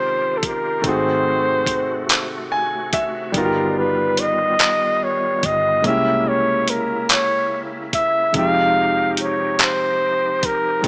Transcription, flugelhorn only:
0, 0, Header, 1, 2, 480
1, 0, Start_track
1, 0, Key_signature, -4, "minor"
1, 0, Tempo, 833333
1, 485, Time_signature, 6, 3, 24, 8
1, 6266, End_track
2, 0, Start_track
2, 0, Title_t, "Flugelhorn"
2, 0, Program_c, 0, 56
2, 0, Note_on_c, 0, 72, 102
2, 215, Note_on_c, 0, 69, 62
2, 224, Note_off_c, 0, 72, 0
2, 261, Note_on_c, 0, 70, 91
2, 269, Note_off_c, 0, 69, 0
2, 499, Note_on_c, 0, 72, 102
2, 508, Note_off_c, 0, 70, 0
2, 1452, Note_off_c, 0, 72, 0
2, 1939, Note_on_c, 0, 70, 91
2, 2178, Note_on_c, 0, 71, 89
2, 2186, Note_off_c, 0, 70, 0
2, 2418, Note_on_c, 0, 75, 101
2, 2426, Note_off_c, 0, 71, 0
2, 2900, Note_on_c, 0, 73, 86
2, 2909, Note_off_c, 0, 75, 0
2, 3140, Note_on_c, 0, 75, 96
2, 3149, Note_off_c, 0, 73, 0
2, 3372, Note_off_c, 0, 75, 0
2, 3379, Note_on_c, 0, 76, 105
2, 3618, Note_on_c, 0, 73, 95
2, 3627, Note_off_c, 0, 76, 0
2, 3858, Note_on_c, 0, 70, 84
2, 3867, Note_off_c, 0, 73, 0
2, 4091, Note_off_c, 0, 70, 0
2, 4099, Note_on_c, 0, 73, 106
2, 4394, Note_off_c, 0, 73, 0
2, 4578, Note_on_c, 0, 76, 99
2, 4795, Note_off_c, 0, 76, 0
2, 4819, Note_on_c, 0, 77, 117
2, 5269, Note_off_c, 0, 77, 0
2, 5299, Note_on_c, 0, 73, 90
2, 5546, Note_on_c, 0, 72, 103
2, 5555, Note_off_c, 0, 73, 0
2, 6023, Note_on_c, 0, 70, 88
2, 6032, Note_off_c, 0, 72, 0
2, 6266, Note_off_c, 0, 70, 0
2, 6266, End_track
0, 0, End_of_file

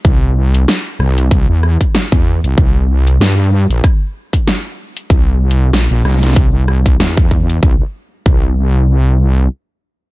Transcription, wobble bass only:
0, 0, Header, 1, 2, 480
1, 0, Start_track
1, 0, Tempo, 631579
1, 39, Time_signature, 4, 2, 24, 8
1, 7684, End_track
2, 0, Start_track
2, 0, Title_t, "Wobble bass"
2, 0, Program_c, 0, 39
2, 35, Note_on_c, 0, 36, 103
2, 501, Note_off_c, 0, 36, 0
2, 755, Note_on_c, 0, 36, 101
2, 1111, Note_off_c, 0, 36, 0
2, 1130, Note_on_c, 0, 40, 100
2, 1351, Note_off_c, 0, 40, 0
2, 1612, Note_on_c, 0, 40, 92
2, 1832, Note_off_c, 0, 40, 0
2, 1852, Note_on_c, 0, 36, 100
2, 1941, Note_off_c, 0, 36, 0
2, 1958, Note_on_c, 0, 36, 99
2, 2422, Note_off_c, 0, 36, 0
2, 2433, Note_on_c, 0, 43, 97
2, 2790, Note_off_c, 0, 43, 0
2, 2810, Note_on_c, 0, 34, 102
2, 2900, Note_off_c, 0, 34, 0
2, 3876, Note_on_c, 0, 36, 96
2, 4341, Note_off_c, 0, 36, 0
2, 4351, Note_on_c, 0, 34, 98
2, 4469, Note_off_c, 0, 34, 0
2, 4489, Note_on_c, 0, 34, 100
2, 4580, Note_off_c, 0, 34, 0
2, 4591, Note_on_c, 0, 36, 101
2, 5298, Note_off_c, 0, 36, 0
2, 5314, Note_on_c, 0, 40, 97
2, 5780, Note_off_c, 0, 40, 0
2, 5796, Note_on_c, 0, 36, 98
2, 5943, Note_off_c, 0, 36, 0
2, 6276, Note_on_c, 0, 36, 97
2, 7207, Note_off_c, 0, 36, 0
2, 7684, End_track
0, 0, End_of_file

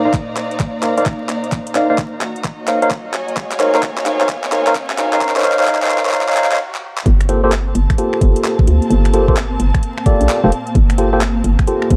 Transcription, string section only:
0, 0, Header, 1, 2, 480
1, 0, Start_track
1, 0, Key_signature, -2, "minor"
1, 0, Tempo, 461538
1, 1582, Time_signature, 4, 2, 24, 8
1, 12445, End_track
2, 0, Start_track
2, 0, Title_t, "String section"
2, 0, Program_c, 0, 48
2, 0, Note_on_c, 0, 63, 83
2, 0, Note_on_c, 0, 72, 81
2, 0, Note_on_c, 0, 74, 84
2, 0, Note_on_c, 0, 77, 84
2, 0, Note_on_c, 0, 82, 67
2, 2301, Note_off_c, 0, 72, 0
2, 2302, Note_off_c, 0, 77, 0
2, 2302, Note_on_c, 0, 66, 75
2, 2303, Note_off_c, 0, 74, 0
2, 2509, Note_on_c, 0, 75, 78
2, 2702, Note_on_c, 0, 73, 93
2, 3068, Note_off_c, 0, 63, 0
2, 3266, Note_on_c, 0, 80, 91
2, 3340, Note_off_c, 0, 82, 0
2, 3498, Note_on_c, 0, 77, 84
2, 6861, Note_off_c, 0, 73, 0
2, 6862, Note_off_c, 0, 66, 0
2, 6862, Note_off_c, 0, 75, 0
2, 6862, Note_off_c, 0, 80, 0
2, 6863, Note_off_c, 0, 77, 0
2, 7343, Note_on_c, 0, 60, 81
2, 7679, Note_on_c, 0, 58, 70
2, 7973, Note_on_c, 0, 81, 72
2, 12445, Note_off_c, 0, 58, 0
2, 12445, Note_off_c, 0, 60, 0
2, 12445, Note_off_c, 0, 81, 0
2, 12445, End_track
0, 0, End_of_file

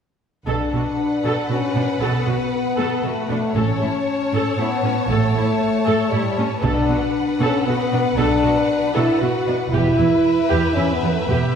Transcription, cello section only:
0, 0, Header, 1, 2, 480
1, 0, Start_track
1, 0, Key_signature, 2, "minor"
1, 0, Tempo, 515021
1, 438, Time_signature, 3, 2, 24, 8
1, 10767, End_track
2, 0, Start_track
2, 0, Title_t, "Cello section"
2, 0, Program_c, 0, 48
2, 436, Note_on_c, 0, 47, 42
2, 510, Note_off_c, 0, 47, 0
2, 680, Note_on_c, 0, 47, 31
2, 755, Note_off_c, 0, 47, 0
2, 1158, Note_on_c, 0, 47, 42
2, 1232, Note_off_c, 0, 47, 0
2, 1398, Note_on_c, 0, 47, 27
2, 1472, Note_off_c, 0, 47, 0
2, 1630, Note_on_c, 0, 47, 36
2, 1704, Note_off_c, 0, 47, 0
2, 1871, Note_on_c, 0, 47, 45
2, 1946, Note_off_c, 0, 47, 0
2, 2110, Note_on_c, 0, 47, 36
2, 2185, Note_off_c, 0, 47, 0
2, 2590, Note_on_c, 0, 47, 53
2, 2665, Note_off_c, 0, 47, 0
2, 2827, Note_on_c, 0, 47, 32
2, 2902, Note_off_c, 0, 47, 0
2, 3069, Note_on_c, 0, 47, 35
2, 3143, Note_off_c, 0, 47, 0
2, 3311, Note_on_c, 0, 45, 49
2, 3386, Note_off_c, 0, 45, 0
2, 3555, Note_on_c, 0, 45, 35
2, 3630, Note_off_c, 0, 45, 0
2, 4029, Note_on_c, 0, 45, 51
2, 4104, Note_off_c, 0, 45, 0
2, 4262, Note_on_c, 0, 45, 37
2, 4337, Note_off_c, 0, 45, 0
2, 4500, Note_on_c, 0, 45, 37
2, 4574, Note_off_c, 0, 45, 0
2, 4740, Note_on_c, 0, 45, 52
2, 4814, Note_off_c, 0, 45, 0
2, 4983, Note_on_c, 0, 45, 38
2, 5057, Note_off_c, 0, 45, 0
2, 5468, Note_on_c, 0, 45, 53
2, 5543, Note_off_c, 0, 45, 0
2, 5699, Note_on_c, 0, 45, 34
2, 5773, Note_off_c, 0, 45, 0
2, 5940, Note_on_c, 0, 45, 43
2, 6014, Note_off_c, 0, 45, 0
2, 6179, Note_on_c, 0, 47, 61
2, 6253, Note_off_c, 0, 47, 0
2, 6418, Note_on_c, 0, 47, 41
2, 6492, Note_off_c, 0, 47, 0
2, 6900, Note_on_c, 0, 47, 58
2, 6974, Note_off_c, 0, 47, 0
2, 7151, Note_on_c, 0, 47, 41
2, 7225, Note_off_c, 0, 47, 0
2, 7387, Note_on_c, 0, 47, 43
2, 7462, Note_off_c, 0, 47, 0
2, 7617, Note_on_c, 0, 47, 52
2, 7692, Note_off_c, 0, 47, 0
2, 7860, Note_on_c, 0, 47, 39
2, 7934, Note_off_c, 0, 47, 0
2, 8347, Note_on_c, 0, 47, 60
2, 8422, Note_off_c, 0, 47, 0
2, 8587, Note_on_c, 0, 47, 40
2, 8662, Note_off_c, 0, 47, 0
2, 8828, Note_on_c, 0, 47, 44
2, 8902, Note_off_c, 0, 47, 0
2, 9075, Note_on_c, 0, 40, 53
2, 9149, Note_off_c, 0, 40, 0
2, 9306, Note_on_c, 0, 40, 42
2, 9381, Note_off_c, 0, 40, 0
2, 9797, Note_on_c, 0, 40, 51
2, 9872, Note_off_c, 0, 40, 0
2, 10030, Note_on_c, 0, 40, 35
2, 10104, Note_off_c, 0, 40, 0
2, 10267, Note_on_c, 0, 40, 41
2, 10342, Note_off_c, 0, 40, 0
2, 10514, Note_on_c, 0, 40, 45
2, 10589, Note_off_c, 0, 40, 0
2, 10767, End_track
0, 0, End_of_file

